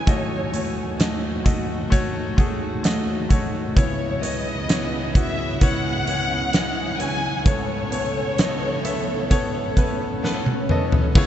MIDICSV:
0, 0, Header, 1, 8, 480
1, 0, Start_track
1, 0, Tempo, 923077
1, 39, Time_signature, 4, 2, 24, 8
1, 5858, End_track
2, 0, Start_track
2, 0, Title_t, "Violin section"
2, 0, Program_c, 0, 48
2, 47, Note_on_c, 0, 73, 67
2, 523, Note_off_c, 0, 73, 0
2, 1969, Note_on_c, 0, 73, 74
2, 2188, Note_off_c, 0, 73, 0
2, 2204, Note_on_c, 0, 75, 72
2, 2681, Note_on_c, 0, 76, 78
2, 2682, Note_off_c, 0, 75, 0
2, 2904, Note_off_c, 0, 76, 0
2, 2923, Note_on_c, 0, 78, 101
2, 3641, Note_off_c, 0, 78, 0
2, 3642, Note_on_c, 0, 80, 94
2, 3881, Note_off_c, 0, 80, 0
2, 3882, Note_on_c, 0, 73, 91
2, 5300, Note_off_c, 0, 73, 0
2, 5858, End_track
3, 0, Start_track
3, 0, Title_t, "Grand piano"
3, 0, Program_c, 1, 0
3, 0, Control_c, 1, 64, 127
3, 36, Note_on_c, 1, 57, 66
3, 40, Note_on_c, 1, 39, 45
3, 40, Note_on_c, 1, 66, 65
3, 41, Note_on_c, 1, 51, 42
3, 44, Note_on_c, 1, 75, 80
3, 46, Control_c, 1, 64, 0
3, 152, Control_c, 1, 64, 127
3, 266, Note_off_c, 1, 57, 0
3, 268, Note_off_c, 1, 66, 0
3, 270, Note_off_c, 1, 75, 0
3, 277, Note_on_c, 1, 57, 61
3, 280, Note_on_c, 1, 66, 49
3, 286, Note_on_c, 1, 73, 65
3, 506, Note_off_c, 1, 57, 0
3, 508, Note_off_c, 1, 66, 0
3, 511, Note_off_c, 1, 73, 0
3, 517, Note_on_c, 1, 57, 60
3, 520, Note_on_c, 1, 66, 62
3, 523, Note_on_c, 1, 75, 68
3, 743, Note_off_c, 1, 57, 0
3, 748, Note_off_c, 1, 66, 0
3, 749, Note_off_c, 1, 75, 0
3, 751, Note_on_c, 1, 57, 68
3, 756, Note_on_c, 1, 66, 64
3, 759, Note_on_c, 1, 75, 69
3, 981, Note_off_c, 1, 57, 0
3, 986, Note_off_c, 1, 66, 0
3, 987, Note_off_c, 1, 75, 0
3, 989, Note_on_c, 1, 57, 82
3, 994, Note_on_c, 1, 66, 83
3, 997, Note_on_c, 1, 73, 101
3, 1222, Note_off_c, 1, 57, 0
3, 1225, Note_off_c, 1, 66, 0
3, 1226, Note_off_c, 1, 73, 0
3, 1232, Note_on_c, 1, 57, 74
3, 1238, Note_on_c, 1, 66, 64
3, 1241, Note_on_c, 1, 68, 72
3, 1464, Note_off_c, 1, 57, 0
3, 1466, Note_off_c, 1, 66, 0
3, 1468, Note_off_c, 1, 68, 0
3, 1472, Note_on_c, 1, 57, 66
3, 1478, Note_on_c, 1, 66, 72
3, 1481, Note_on_c, 1, 75, 79
3, 1704, Note_off_c, 1, 57, 0
3, 1706, Note_off_c, 1, 66, 0
3, 1708, Note_off_c, 1, 75, 0
3, 1712, Note_on_c, 1, 57, 64
3, 1716, Note_on_c, 1, 66, 59
3, 1721, Note_on_c, 1, 73, 73
3, 1939, Note_off_c, 1, 39, 0
3, 1939, Note_off_c, 1, 51, 0
3, 1943, Note_off_c, 1, 57, 0
3, 1946, Note_off_c, 1, 66, 0
3, 1948, Note_off_c, 1, 73, 0
3, 1956, Note_on_c, 1, 59, 68
3, 1960, Note_on_c, 1, 37, 49
3, 1961, Note_on_c, 1, 49, 51
3, 1961, Note_on_c, 1, 64, 74
3, 1964, Note_on_c, 1, 73, 80
3, 1966, Control_c, 1, 64, 0
3, 2051, Control_c, 1, 64, 127
3, 2185, Note_off_c, 1, 59, 0
3, 2188, Note_off_c, 1, 64, 0
3, 2190, Note_off_c, 1, 73, 0
3, 2193, Note_on_c, 1, 59, 64
3, 2199, Note_on_c, 1, 64, 62
3, 2202, Note_on_c, 1, 73, 71
3, 2424, Note_off_c, 1, 59, 0
3, 2427, Note_off_c, 1, 64, 0
3, 2429, Note_off_c, 1, 73, 0
3, 2437, Note_on_c, 1, 59, 69
3, 2439, Note_on_c, 1, 64, 60
3, 2442, Note_on_c, 1, 73, 72
3, 2666, Note_off_c, 1, 59, 0
3, 2667, Note_off_c, 1, 64, 0
3, 2669, Note_off_c, 1, 73, 0
3, 2675, Note_on_c, 1, 59, 57
3, 2680, Note_on_c, 1, 64, 56
3, 2684, Note_on_c, 1, 66, 72
3, 2905, Note_off_c, 1, 59, 0
3, 2908, Note_off_c, 1, 64, 0
3, 2910, Note_off_c, 1, 66, 0
3, 2918, Note_on_c, 1, 59, 74
3, 2922, Note_on_c, 1, 64, 64
3, 2927, Note_on_c, 1, 73, 88
3, 3146, Note_off_c, 1, 59, 0
3, 3149, Note_off_c, 1, 64, 0
3, 3151, Note_off_c, 1, 73, 0
3, 3160, Note_on_c, 1, 59, 59
3, 3164, Note_on_c, 1, 64, 49
3, 3169, Note_on_c, 1, 73, 62
3, 3387, Note_off_c, 1, 59, 0
3, 3390, Note_off_c, 1, 64, 0
3, 3392, Note_off_c, 1, 73, 0
3, 3399, Note_on_c, 1, 59, 65
3, 3401, Note_on_c, 1, 64, 59
3, 3408, Note_on_c, 1, 75, 69
3, 3627, Note_off_c, 1, 59, 0
3, 3628, Note_off_c, 1, 64, 0
3, 3632, Note_off_c, 1, 75, 0
3, 3636, Note_on_c, 1, 59, 57
3, 3641, Note_on_c, 1, 64, 52
3, 3643, Note_on_c, 1, 73, 62
3, 3859, Note_off_c, 1, 37, 0
3, 3859, Note_off_c, 1, 49, 0
3, 3866, Note_off_c, 1, 59, 0
3, 3868, Note_off_c, 1, 64, 0
3, 3869, Note_off_c, 1, 73, 0
3, 3875, Note_on_c, 1, 59, 72
3, 3879, Note_on_c, 1, 37, 48
3, 3879, Note_on_c, 1, 69, 69
3, 3880, Note_on_c, 1, 49, 52
3, 3884, Note_on_c, 1, 73, 81
3, 3887, Control_c, 1, 64, 0
3, 3988, Control_c, 1, 64, 127
3, 4105, Note_off_c, 1, 59, 0
3, 4107, Note_off_c, 1, 69, 0
3, 4109, Note_off_c, 1, 73, 0
3, 4116, Note_on_c, 1, 59, 70
3, 4122, Note_on_c, 1, 69, 60
3, 4125, Note_on_c, 1, 73, 76
3, 4346, Note_off_c, 1, 59, 0
3, 4348, Note_off_c, 1, 69, 0
3, 4350, Note_off_c, 1, 73, 0
3, 4358, Note_on_c, 1, 59, 66
3, 4363, Note_on_c, 1, 69, 60
3, 4367, Note_on_c, 1, 75, 76
3, 4587, Note_off_c, 1, 59, 0
3, 4589, Note_off_c, 1, 69, 0
3, 4591, Note_off_c, 1, 75, 0
3, 4596, Note_on_c, 1, 59, 71
3, 4599, Note_on_c, 1, 69, 70
3, 4603, Note_on_c, 1, 76, 78
3, 4826, Note_off_c, 1, 59, 0
3, 4827, Note_off_c, 1, 69, 0
3, 4829, Note_off_c, 1, 76, 0
3, 4837, Note_on_c, 1, 59, 94
3, 4841, Note_on_c, 1, 69, 84
3, 4843, Note_on_c, 1, 73, 102
3, 5066, Note_off_c, 1, 59, 0
3, 5068, Note_off_c, 1, 69, 0
3, 5069, Note_off_c, 1, 73, 0
3, 5079, Note_on_c, 1, 59, 67
3, 5083, Note_on_c, 1, 69, 65
3, 5087, Note_on_c, 1, 71, 75
3, 5307, Note_off_c, 1, 59, 0
3, 5309, Note_off_c, 1, 69, 0
3, 5311, Note_off_c, 1, 71, 0
3, 5321, Note_on_c, 1, 59, 77
3, 5324, Note_on_c, 1, 69, 72
3, 5328, Note_on_c, 1, 71, 90
3, 5548, Note_off_c, 1, 59, 0
3, 5550, Note_off_c, 1, 69, 0
3, 5552, Note_off_c, 1, 71, 0
3, 5563, Note_on_c, 1, 59, 76
3, 5565, Note_on_c, 1, 69, 67
3, 5570, Note_on_c, 1, 75, 78
3, 5778, Note_off_c, 1, 37, 0
3, 5779, Note_off_c, 1, 49, 0
3, 5789, Note_off_c, 1, 59, 0
3, 5790, Note_off_c, 1, 69, 0
3, 5792, Note_off_c, 1, 75, 0
3, 5800, Note_on_c, 1, 59, 108
3, 5804, Note_on_c, 1, 64, 97
3, 5806, Control_c, 1, 64, 0
3, 5806, Note_on_c, 1, 37, 65
3, 5806, Note_on_c, 1, 49, 74
3, 5806, Note_on_c, 1, 68, 87
3, 5811, Note_on_c, 1, 73, 114
3, 5858, Note_off_c, 1, 37, 0
3, 5858, Note_off_c, 1, 49, 0
3, 5858, Note_off_c, 1, 59, 0
3, 5858, Note_off_c, 1, 64, 0
3, 5858, Note_off_c, 1, 68, 0
3, 5858, Note_off_c, 1, 73, 0
3, 5858, End_track
4, 0, Start_track
4, 0, Title_t, "Clean electric guitar"
4, 0, Program_c, 2, 27
4, 33, Note_on_c, 2, 51, 57
4, 36, Note_on_c, 2, 54, 62
4, 40, Note_on_c, 2, 63, 62
4, 41, Note_on_c, 2, 66, 70
4, 44, Note_on_c, 2, 69, 71
4, 266, Note_off_c, 2, 54, 0
4, 272, Note_off_c, 2, 63, 0
4, 272, Note_on_c, 2, 54, 46
4, 276, Note_off_c, 2, 51, 0
4, 276, Note_off_c, 2, 66, 0
4, 278, Note_on_c, 2, 63, 52
4, 280, Note_off_c, 2, 69, 0
4, 282, Note_on_c, 2, 66, 54
4, 286, Note_on_c, 2, 69, 50
4, 509, Note_off_c, 2, 54, 0
4, 512, Note_off_c, 2, 63, 0
4, 513, Note_on_c, 2, 51, 60
4, 514, Note_off_c, 2, 66, 0
4, 515, Note_on_c, 2, 54, 60
4, 516, Note_off_c, 2, 69, 0
4, 518, Note_on_c, 2, 63, 66
4, 520, Note_on_c, 2, 66, 70
4, 522, Note_on_c, 2, 69, 68
4, 745, Note_off_c, 2, 54, 0
4, 750, Note_off_c, 2, 63, 0
4, 751, Note_on_c, 2, 54, 50
4, 755, Note_off_c, 2, 66, 0
4, 756, Note_off_c, 2, 51, 0
4, 756, Note_on_c, 2, 63, 60
4, 759, Note_off_c, 2, 69, 0
4, 761, Note_on_c, 2, 66, 51
4, 766, Note_on_c, 2, 69, 56
4, 1105, Note_off_c, 2, 69, 0
4, 1111, Note_on_c, 2, 69, 48
4, 1112, Note_off_c, 2, 66, 0
4, 1115, Note_off_c, 2, 54, 0
4, 1118, Note_off_c, 2, 63, 0
4, 1118, Note_on_c, 2, 66, 45
4, 1125, Note_on_c, 2, 63, 37
4, 1231, Note_off_c, 2, 63, 0
4, 1232, Note_on_c, 2, 54, 54
4, 1235, Note_off_c, 2, 69, 0
4, 1236, Note_off_c, 2, 66, 0
4, 1238, Note_on_c, 2, 63, 55
4, 1242, Note_on_c, 2, 66, 55
4, 1246, Note_on_c, 2, 69, 51
4, 1346, Note_off_c, 2, 69, 0
4, 1352, Note_on_c, 2, 69, 50
4, 1353, Note_off_c, 2, 66, 0
4, 1356, Note_off_c, 2, 54, 0
4, 1358, Note_off_c, 2, 63, 0
4, 1360, Note_on_c, 2, 66, 45
4, 1366, Note_on_c, 2, 63, 44
4, 1474, Note_off_c, 2, 63, 0
4, 1474, Note_on_c, 2, 51, 76
4, 1476, Note_off_c, 2, 66, 0
4, 1476, Note_off_c, 2, 69, 0
4, 1477, Note_on_c, 2, 54, 72
4, 1480, Note_on_c, 2, 63, 78
4, 1483, Note_on_c, 2, 66, 74
4, 1484, Note_on_c, 2, 69, 88
4, 1705, Note_off_c, 2, 54, 0
4, 1711, Note_off_c, 2, 63, 0
4, 1711, Note_on_c, 2, 54, 54
4, 1715, Note_off_c, 2, 66, 0
4, 1717, Note_off_c, 2, 51, 0
4, 1717, Note_on_c, 2, 63, 61
4, 1720, Note_off_c, 2, 69, 0
4, 1721, Note_on_c, 2, 66, 69
4, 1726, Note_on_c, 2, 69, 70
4, 1826, Note_off_c, 2, 69, 0
4, 1832, Note_on_c, 2, 69, 50
4, 1834, Note_off_c, 2, 66, 0
4, 1835, Note_off_c, 2, 54, 0
4, 1838, Note_off_c, 2, 63, 0
4, 1840, Note_on_c, 2, 66, 43
4, 1846, Note_on_c, 2, 63, 42
4, 1953, Note_on_c, 2, 49, 63
4, 1956, Note_off_c, 2, 69, 0
4, 1957, Note_off_c, 2, 63, 0
4, 1957, Note_on_c, 2, 56, 58
4, 1959, Note_on_c, 2, 59, 69
4, 1960, Note_off_c, 2, 66, 0
4, 1962, Note_on_c, 2, 64, 65
4, 1964, Note_on_c, 2, 68, 72
4, 2188, Note_off_c, 2, 56, 0
4, 2193, Note_off_c, 2, 59, 0
4, 2194, Note_on_c, 2, 56, 50
4, 2196, Note_off_c, 2, 49, 0
4, 2199, Note_off_c, 2, 64, 0
4, 2199, Note_on_c, 2, 59, 56
4, 2202, Note_off_c, 2, 68, 0
4, 2205, Note_on_c, 2, 64, 50
4, 2209, Note_on_c, 2, 68, 59
4, 2432, Note_off_c, 2, 56, 0
4, 2435, Note_off_c, 2, 59, 0
4, 2435, Note_on_c, 2, 49, 64
4, 2437, Note_off_c, 2, 64, 0
4, 2438, Note_on_c, 2, 56, 73
4, 2439, Note_off_c, 2, 68, 0
4, 2442, Note_on_c, 2, 59, 78
4, 2443, Note_on_c, 2, 64, 70
4, 2445, Note_on_c, 2, 68, 68
4, 2668, Note_off_c, 2, 56, 0
4, 2673, Note_off_c, 2, 59, 0
4, 2675, Note_on_c, 2, 56, 53
4, 2677, Note_off_c, 2, 49, 0
4, 2678, Note_off_c, 2, 64, 0
4, 2680, Note_on_c, 2, 59, 59
4, 2682, Note_off_c, 2, 68, 0
4, 2684, Note_on_c, 2, 64, 52
4, 2688, Note_on_c, 2, 68, 53
4, 3028, Note_off_c, 2, 68, 0
4, 3035, Note_on_c, 2, 68, 45
4, 3037, Note_off_c, 2, 56, 0
4, 3037, Note_off_c, 2, 64, 0
4, 3039, Note_off_c, 2, 59, 0
4, 3043, Note_on_c, 2, 64, 46
4, 3049, Note_on_c, 2, 59, 37
4, 3154, Note_off_c, 2, 59, 0
4, 3154, Note_on_c, 2, 56, 51
4, 3157, Note_off_c, 2, 68, 0
4, 3158, Note_off_c, 2, 64, 0
4, 3160, Note_on_c, 2, 59, 53
4, 3165, Note_on_c, 2, 64, 56
4, 3168, Note_on_c, 2, 68, 53
4, 3267, Note_off_c, 2, 68, 0
4, 3273, Note_on_c, 2, 68, 48
4, 3276, Note_off_c, 2, 64, 0
4, 3277, Note_off_c, 2, 56, 0
4, 3280, Note_off_c, 2, 59, 0
4, 3282, Note_on_c, 2, 64, 41
4, 3288, Note_on_c, 2, 59, 36
4, 3393, Note_off_c, 2, 59, 0
4, 3394, Note_on_c, 2, 49, 78
4, 3395, Note_off_c, 2, 64, 0
4, 3396, Note_off_c, 2, 68, 0
4, 3397, Note_on_c, 2, 56, 67
4, 3399, Note_on_c, 2, 59, 70
4, 3401, Note_on_c, 2, 64, 74
4, 3404, Note_on_c, 2, 68, 80
4, 3626, Note_off_c, 2, 56, 0
4, 3632, Note_off_c, 2, 59, 0
4, 3632, Note_on_c, 2, 56, 57
4, 3636, Note_off_c, 2, 49, 0
4, 3636, Note_off_c, 2, 64, 0
4, 3638, Note_on_c, 2, 59, 59
4, 3640, Note_off_c, 2, 68, 0
4, 3642, Note_on_c, 2, 64, 59
4, 3646, Note_on_c, 2, 68, 55
4, 3746, Note_off_c, 2, 68, 0
4, 3752, Note_on_c, 2, 68, 54
4, 3754, Note_off_c, 2, 64, 0
4, 3756, Note_off_c, 2, 56, 0
4, 3759, Note_off_c, 2, 59, 0
4, 3761, Note_on_c, 2, 64, 42
4, 3767, Note_on_c, 2, 59, 41
4, 3873, Note_off_c, 2, 59, 0
4, 3874, Note_on_c, 2, 49, 64
4, 3876, Note_off_c, 2, 64, 0
4, 3876, Note_off_c, 2, 68, 0
4, 3878, Note_on_c, 2, 57, 67
4, 3880, Note_on_c, 2, 59, 61
4, 3883, Note_on_c, 2, 64, 73
4, 3884, Note_on_c, 2, 69, 70
4, 4107, Note_off_c, 2, 57, 0
4, 4113, Note_off_c, 2, 59, 0
4, 4113, Note_on_c, 2, 57, 60
4, 4117, Note_off_c, 2, 49, 0
4, 4118, Note_off_c, 2, 64, 0
4, 4120, Note_on_c, 2, 59, 51
4, 4122, Note_off_c, 2, 69, 0
4, 4124, Note_on_c, 2, 64, 53
4, 4129, Note_on_c, 2, 69, 61
4, 4352, Note_off_c, 2, 57, 0
4, 4355, Note_off_c, 2, 59, 0
4, 4356, Note_off_c, 2, 64, 0
4, 4356, Note_on_c, 2, 49, 65
4, 4358, Note_on_c, 2, 57, 68
4, 4359, Note_off_c, 2, 69, 0
4, 4361, Note_on_c, 2, 59, 75
4, 4363, Note_on_c, 2, 64, 76
4, 4365, Note_on_c, 2, 69, 87
4, 4587, Note_off_c, 2, 57, 0
4, 4593, Note_off_c, 2, 59, 0
4, 4593, Note_on_c, 2, 57, 53
4, 4597, Note_off_c, 2, 49, 0
4, 4597, Note_off_c, 2, 64, 0
4, 4599, Note_on_c, 2, 59, 58
4, 4602, Note_off_c, 2, 69, 0
4, 4603, Note_on_c, 2, 64, 66
4, 4608, Note_on_c, 2, 69, 62
4, 4949, Note_off_c, 2, 69, 0
4, 4955, Note_on_c, 2, 69, 56
4, 4956, Note_off_c, 2, 57, 0
4, 4956, Note_off_c, 2, 64, 0
4, 4959, Note_off_c, 2, 59, 0
4, 4962, Note_on_c, 2, 64, 54
4, 4969, Note_on_c, 2, 59, 41
4, 5074, Note_off_c, 2, 59, 0
4, 5074, Note_on_c, 2, 57, 59
4, 5077, Note_off_c, 2, 69, 0
4, 5078, Note_off_c, 2, 64, 0
4, 5080, Note_on_c, 2, 59, 57
4, 5084, Note_on_c, 2, 64, 57
4, 5089, Note_on_c, 2, 69, 58
4, 5188, Note_off_c, 2, 69, 0
4, 5194, Note_on_c, 2, 69, 55
4, 5197, Note_off_c, 2, 57, 0
4, 5197, Note_off_c, 2, 64, 0
4, 5200, Note_off_c, 2, 59, 0
4, 5203, Note_on_c, 2, 64, 51
4, 5209, Note_on_c, 2, 59, 42
4, 5315, Note_off_c, 2, 59, 0
4, 5316, Note_on_c, 2, 49, 76
4, 5317, Note_off_c, 2, 69, 0
4, 5318, Note_off_c, 2, 64, 0
4, 5319, Note_on_c, 2, 57, 80
4, 5322, Note_on_c, 2, 59, 81
4, 5324, Note_on_c, 2, 64, 80
4, 5326, Note_on_c, 2, 69, 92
4, 5549, Note_off_c, 2, 57, 0
4, 5555, Note_off_c, 2, 59, 0
4, 5555, Note_on_c, 2, 57, 61
4, 5558, Note_off_c, 2, 49, 0
4, 5559, Note_off_c, 2, 64, 0
4, 5561, Note_on_c, 2, 59, 69
4, 5562, Note_off_c, 2, 69, 0
4, 5565, Note_on_c, 2, 64, 65
4, 5570, Note_on_c, 2, 69, 70
4, 5670, Note_off_c, 2, 69, 0
4, 5676, Note_on_c, 2, 69, 59
4, 5677, Note_off_c, 2, 57, 0
4, 5678, Note_off_c, 2, 64, 0
4, 5680, Note_off_c, 2, 59, 0
4, 5684, Note_on_c, 2, 64, 50
4, 5691, Note_on_c, 2, 59, 47
4, 5798, Note_off_c, 2, 59, 0
4, 5798, Note_off_c, 2, 69, 0
4, 5798, Note_on_c, 2, 49, 74
4, 5800, Note_off_c, 2, 64, 0
4, 5802, Note_on_c, 2, 56, 82
4, 5804, Note_on_c, 2, 59, 85
4, 5807, Note_on_c, 2, 64, 95
4, 5809, Note_on_c, 2, 68, 90
4, 5858, Note_off_c, 2, 49, 0
4, 5858, Note_off_c, 2, 56, 0
4, 5858, Note_off_c, 2, 59, 0
4, 5858, Note_off_c, 2, 64, 0
4, 5858, Note_off_c, 2, 68, 0
4, 5858, End_track
5, 0, Start_track
5, 0, Title_t, "String section"
5, 0, Program_c, 3, 48
5, 34, Note_on_c, 3, 51, 60
5, 35, Note_on_c, 3, 57, 59
5, 37, Note_on_c, 3, 39, 69
5, 37, Note_on_c, 3, 66, 68
5, 1938, Note_off_c, 3, 51, 0
5, 1938, Note_off_c, 3, 57, 0
5, 1939, Note_off_c, 3, 39, 0
5, 1939, Note_off_c, 3, 66, 0
5, 1954, Note_on_c, 3, 49, 66
5, 1955, Note_on_c, 3, 37, 73
5, 1956, Note_on_c, 3, 59, 65
5, 1956, Note_on_c, 3, 64, 77
5, 2908, Note_off_c, 3, 59, 0
5, 2916, Note_on_c, 3, 61, 61
5, 3858, Note_off_c, 3, 64, 0
5, 3868, Note_off_c, 3, 61, 0
5, 3882, Note_on_c, 3, 59, 69
5, 3883, Note_on_c, 3, 69, 84
5, 5776, Note_off_c, 3, 37, 0
5, 5776, Note_off_c, 3, 49, 0
5, 5781, Note_off_c, 3, 59, 0
5, 5782, Note_off_c, 3, 69, 0
5, 5858, End_track
6, 0, Start_track
6, 0, Title_t, "Downlifter"
6, 0, Program_c, 4, 103
6, 0, Note_on_c, 4, 60, 52
6, 1959, Note_off_c, 4, 60, 0
6, 5858, End_track
7, 0, Start_track
7, 0, Title_t, "Swell"
7, 0, Program_c, 5, 103
7, 3879, Note_on_c, 5, 60, 74
7, 5799, Note_off_c, 5, 60, 0
7, 5858, End_track
8, 0, Start_track
8, 0, Title_t, "Drums"
8, 38, Note_on_c, 9, 36, 85
8, 38, Note_on_c, 9, 42, 64
8, 90, Note_off_c, 9, 36, 0
8, 90, Note_off_c, 9, 42, 0
8, 278, Note_on_c, 9, 42, 58
8, 330, Note_off_c, 9, 42, 0
8, 519, Note_on_c, 9, 42, 74
8, 523, Note_on_c, 9, 38, 93
8, 571, Note_off_c, 9, 42, 0
8, 575, Note_off_c, 9, 38, 0
8, 758, Note_on_c, 9, 36, 72
8, 759, Note_on_c, 9, 42, 67
8, 810, Note_off_c, 9, 36, 0
8, 811, Note_off_c, 9, 42, 0
8, 998, Note_on_c, 9, 42, 65
8, 999, Note_on_c, 9, 36, 64
8, 1050, Note_off_c, 9, 42, 0
8, 1051, Note_off_c, 9, 36, 0
8, 1238, Note_on_c, 9, 36, 67
8, 1239, Note_on_c, 9, 42, 48
8, 1290, Note_off_c, 9, 36, 0
8, 1291, Note_off_c, 9, 42, 0
8, 1477, Note_on_c, 9, 42, 71
8, 1483, Note_on_c, 9, 38, 78
8, 1529, Note_off_c, 9, 42, 0
8, 1535, Note_off_c, 9, 38, 0
8, 1718, Note_on_c, 9, 36, 66
8, 1719, Note_on_c, 9, 42, 52
8, 1770, Note_off_c, 9, 36, 0
8, 1771, Note_off_c, 9, 42, 0
8, 1958, Note_on_c, 9, 36, 82
8, 1959, Note_on_c, 9, 42, 69
8, 2010, Note_off_c, 9, 36, 0
8, 2011, Note_off_c, 9, 42, 0
8, 2200, Note_on_c, 9, 42, 61
8, 2252, Note_off_c, 9, 42, 0
8, 2440, Note_on_c, 9, 42, 86
8, 2445, Note_on_c, 9, 38, 97
8, 2492, Note_off_c, 9, 42, 0
8, 2497, Note_off_c, 9, 38, 0
8, 2679, Note_on_c, 9, 36, 79
8, 2680, Note_on_c, 9, 42, 72
8, 2731, Note_off_c, 9, 36, 0
8, 2732, Note_off_c, 9, 42, 0
8, 2918, Note_on_c, 9, 42, 79
8, 2919, Note_on_c, 9, 36, 71
8, 2970, Note_off_c, 9, 42, 0
8, 2971, Note_off_c, 9, 36, 0
8, 3158, Note_on_c, 9, 42, 45
8, 3210, Note_off_c, 9, 42, 0
8, 3397, Note_on_c, 9, 42, 72
8, 3403, Note_on_c, 9, 38, 86
8, 3449, Note_off_c, 9, 42, 0
8, 3455, Note_off_c, 9, 38, 0
8, 3639, Note_on_c, 9, 42, 53
8, 3691, Note_off_c, 9, 42, 0
8, 3877, Note_on_c, 9, 42, 72
8, 3878, Note_on_c, 9, 36, 92
8, 3929, Note_off_c, 9, 42, 0
8, 3930, Note_off_c, 9, 36, 0
8, 4119, Note_on_c, 9, 42, 65
8, 4171, Note_off_c, 9, 42, 0
8, 4360, Note_on_c, 9, 42, 82
8, 4364, Note_on_c, 9, 38, 112
8, 4412, Note_off_c, 9, 42, 0
8, 4416, Note_off_c, 9, 38, 0
8, 4601, Note_on_c, 9, 42, 78
8, 4653, Note_off_c, 9, 42, 0
8, 4840, Note_on_c, 9, 42, 73
8, 4841, Note_on_c, 9, 36, 68
8, 4892, Note_off_c, 9, 42, 0
8, 4893, Note_off_c, 9, 36, 0
8, 5079, Note_on_c, 9, 36, 62
8, 5080, Note_on_c, 9, 42, 47
8, 5131, Note_off_c, 9, 36, 0
8, 5132, Note_off_c, 9, 42, 0
8, 5327, Note_on_c, 9, 38, 50
8, 5379, Note_off_c, 9, 38, 0
8, 5441, Note_on_c, 9, 48, 56
8, 5493, Note_off_c, 9, 48, 0
8, 5560, Note_on_c, 9, 45, 61
8, 5612, Note_off_c, 9, 45, 0
8, 5680, Note_on_c, 9, 43, 82
8, 5732, Note_off_c, 9, 43, 0
8, 5800, Note_on_c, 9, 36, 109
8, 5800, Note_on_c, 9, 49, 97
8, 5852, Note_off_c, 9, 36, 0
8, 5852, Note_off_c, 9, 49, 0
8, 5858, End_track
0, 0, End_of_file